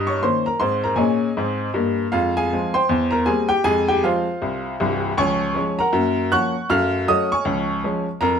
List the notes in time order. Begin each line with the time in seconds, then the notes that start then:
Already playing: G2 D#5 A#5 D#6
0.07 C#5 C#6
0.23 D#3 A#3 C#4 C5 C6
0.46 A#4 A#5
0.60 G#2 C4 C5 C6
0.84 A#4 A#5
0.96 A#2 C#4 G#4 D#5 G#5
1.37 G#2 C4
1.74 G2 A#3
2.12 F2 G#3 F4 F5
2.37 G#4 F5 G#5
2.53 F3 G#3 C4
2.74 C5 G5 C6
2.89 E2
3.11 A#4 A#5
3.26 G3 A#3 C4 G#4 G#5
3.49 G4 G5
3.64 F2 G#3 G#4 G#5
3.88 G4 G5
4.03 F3 G#3 C4 F4 C5 F5
4.42 C2
4.80 C1 C2
5.18 C#2 F3 C#5 G#5 C#6
5.54 F3 G#3 C#4
5.79 A#4 F#5 A#5
5.93 F#2 A#3
6.32 F3 A#3 C#4 F#5 C#6 F#6
6.70 F#2 A3 F5 F6
7.07 F#3 A3 C#4 D#5 D#6
7.32 C#5 G#5 C#6
7.45 C#2 F3
7.84 F3 G#3 C#4
8.21 F2 A#4 A#5